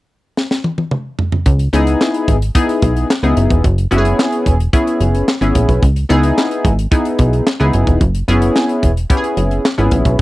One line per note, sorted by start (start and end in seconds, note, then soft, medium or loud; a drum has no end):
0.37 snare medium
0.51 snare medium
0.64 high tom medium
0.78 high tom medium
0.91 mid tom medium
1.19 floor tom medium
1.32 floor tom loud
1.46 1.69 C#2 loud
1.46 kick medium
1.46 closed hi-hat medium
1.59 closed hi-hat soft
1.73 1.96 C#2 loud
1.73 2.36 B3 loud
1.73 2.37 D#4 loud
1.73 2.37 E4 medium
1.73 2.37 G#4 loud
1.73 closed hi-hat medium
1.87 closed hi-hat medium
2.01 snare loud
2.01 clap medium
2.14 closed hi-hat soft
2.28 2.51 G#1 medium
2.28 kick medium
2.28 closed hi-hat medium
2.42 closed hi-hat medium
2.55 3.08 B3 medium
2.55 3.08 D#4 medium
2.55 3.08 E4 medium
2.55 3.08 G#4 loud
2.55 kick loud
2.55 closed hi-hat medium
2.69 closed hi-hat medium
2.82 3.05 B1 medium
2.82 kick medium
2.82 closed hi-hat medium
2.97 closed hi-hat soft
3.10 snare loud
3.10 clap medium
3.23 3.34 C#2 medium
3.23 3.64 B3 medium
3.23 3.64 D#4 medium
3.23 3.64 E4 medium
3.23 3.65 G#4 medium
3.23 closed hi-hat soft
3.37 3.48 F#1 medium
3.37 closed hi-hat medium
3.50 3.62 E1 medium
3.50 kick medium
3.50 closed hi-hat soft
3.64 3.87 F#1 loud
3.64 kick loud
3.64 closed hi-hat medium
3.78 closed hi-hat medium
3.91 4.14 F#1 loud
3.91 4.55 B3 loud
3.91 4.55 C#4 medium
3.91 4.55 E4 medium
3.91 3.98 F#4 medium
3.91 closed hi-hat medium
3.98 4.58 G#4 loud
4.05 closed hi-hat medium
4.19 snare loud
4.19 clap medium
4.32 closed hi-hat soft
4.46 4.69 E1 medium
4.46 kick medium
4.46 closed hi-hat medium
4.60 closed hi-hat medium
4.73 5.26 B3 medium
4.73 5.26 C#4 medium
4.73 5.26 E4 medium
4.73 5.26 G#4 medium
4.73 kick loud
4.73 closed hi-hat medium
4.87 closed hi-hat medium
5.00 5.23 F#1 medium
5.00 closed hi-hat medium
5.15 closed hi-hat soft
5.28 snare loud
5.28 clap medium
5.41 5.53 G#1 medium
5.41 5.82 B3 medium
5.41 5.82 C#4 medium
5.41 5.82 E4 medium
5.41 5.83 G#4 medium
5.41 closed hi-hat soft
5.55 5.67 A#1 medium
5.55 kick medium
5.55 closed hi-hat medium
5.69 5.80 B1 medium
5.69 kick medium
5.69 closed hi-hat soft
5.82 6.05 C#2 loud
5.82 kick medium
5.82 closed hi-hat medium
5.96 closed hi-hat medium
6.09 6.33 C#2 loud
6.09 6.73 B3 loud
6.09 6.73 D#4 loud
6.09 6.73 E4 medium
6.09 6.73 G#4 loud
6.09 closed hi-hat medium
6.23 closed hi-hat medium
6.38 snare medium
6.38 clap medium
6.51 closed hi-hat soft
6.65 6.87 G#1 loud
6.65 kick medium
6.65 closed hi-hat medium
6.79 closed hi-hat medium
6.91 7.44 B3 medium
6.91 7.44 D#4 medium
6.91 7.44 E4 medium
6.91 7.45 G#4 medium
6.91 kick loud
6.91 closed hi-hat medium
7.05 closed hi-hat medium
7.19 7.42 B1 medium
7.19 kick medium
7.19 closed hi-hat medium
7.33 closed hi-hat soft
7.47 snare loud
7.47 clap medium
7.60 7.71 C#2 medium
7.60 8.01 B3 medium
7.60 8.01 D#4 medium
7.60 8.01 E4 medium
7.60 8.01 G#4 loud
7.60 closed hi-hat soft
7.73 7.85 F#1 medium
7.73 closed hi-hat medium
7.87 7.98 E1 medium
7.87 kick medium
7.87 closed hi-hat soft
8.01 8.23 F#1 loud
8.01 kick loud
8.01 closed hi-hat medium
8.15 closed hi-hat medium
8.28 8.51 F#1 medium
8.28 8.91 B3 loud
8.28 8.91 C#4 medium
8.28 8.92 E4 medium
8.28 8.92 G#4 loud
8.28 closed hi-hat medium
8.42 closed hi-hat medium
8.56 snare loud
8.56 clap medium
8.69 closed hi-hat soft
8.83 9.05 E1 medium
8.83 kick medium
8.83 closed hi-hat medium
8.97 closed hi-hat medium
9.10 9.62 B3 medium
9.10 9.63 C#4 medium
9.10 9.63 E4 medium
9.10 9.17 G4 medium
9.10 kick loud
9.10 closed hi-hat medium
9.17 9.66 G#4 loud
9.24 closed hi-hat medium
9.37 9.60 F#1 medium
9.37 closed hi-hat medium
9.51 closed hi-hat soft
9.65 snare loud
9.65 clap medium
9.78 9.89 G#1 medium
9.78 10.19 B3 medium
9.78 10.19 C#4 medium
9.78 10.19 E4 medium
9.78 10.19 G#4 medium
9.78 closed hi-hat soft
9.91 10.03 A#1 medium
9.91 kick medium
9.91 closed hi-hat medium
10.05 10.17 B1 medium
10.05 kick medium
10.05 closed hi-hat soft